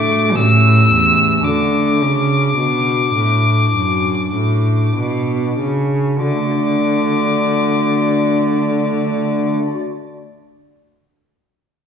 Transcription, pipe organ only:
Already playing: A3 D4 F#4
0.33 A3 C#4 G4
0.38 A2
0.91 E2
1.40 A3 D4 F#4
1.45 D3
2.00 C#3
2.58 B2
3.15 A2
3.74 F#2
4.35 A2
4.96 B2
5.59 C#3
6.23 D3
6.30 A3
6.38 D4
6.44 F#4
6.51 D5

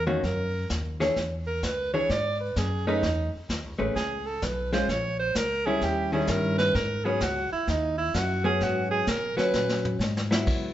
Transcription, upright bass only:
Already playing: E2
0.24 F#2
0.70 D#2
1.16 E2
1.63 C#2
2.09 G#2
2.56 F#2
3.03 E2
3.34 muted upright bass stroke
3.49 D#2
3.64 C#2
3.79 A1
3.96 C#2
4.42 B1
4.88 A#1
5.35 C#2
5.82 D#2
6.28 G2
6.75 G#2
7.21 C#2
7.52 muted upright bass stroke
7.68 D#2
8.14 F#2
8.61 G#2
9.07 B2
9.37 muted upright bass stroke
9.54 A#2
9.99 G#2
10.47 C#2

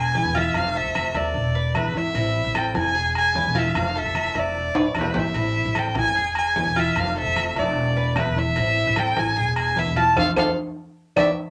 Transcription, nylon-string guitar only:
0.15 B2 D3 G#3 B3 E4
0.35 G#3 B3 E4
0.54 C3 A3 C4 F4
0.95 C3 E3 A3 C4 F4
1.14 A3 C4 F4
1.35 muted nylon-string guitar stroke
1.75 B2 D3 G#3 B3 E4
1.95 G#3 B3 E4
2.15 E3 G3 C4 E4
2.55 E3 G3 C4 E4
2.75 G3 C4 E4
2.95 muted nylon-string guitar stroke
3.34 B2 D3 G#3 B3 E4
3.54 G#3 B3 E4
3.76 C3 A3 C4 F4
4.16 C3 E3 A3 C4 F4
4.36 A3 C4 F4
4.56 muted nylon-string guitar stroke
4.96 B2 D3 G#3 B3 E4
5.15 G#3 B3 E4
5.36 E3 G3 C4 E4
5.76 E3 G3 C4 E4
5.96 G3 C4 E4
6.18 muted nylon-string guitar stroke
6.55 B2 D3 G#3 B3 E4
6.76 G#3 B3 E4
6.96 C3 A3 C4 F4
7.37 C3 E3 A3 C4 F4
7.56 A3 C4 F4
7.77 muted nylon-string guitar stroke
8.17 B2 D3 G#3 B3 E4
8.36 G#3 B3 E4
8.56 E3 G3 C4 E4
8.97 E3 G3 C4 E4
9.17 G3 C4 E4
9.37 muted nylon-string guitar stroke
9.76 B2 D3 G#3 B3 E4
9.96 G#3 B3 E4
10.17 F3 A3 C4
10.37 F3 A3 C4
11.16 E3 G#3 B3

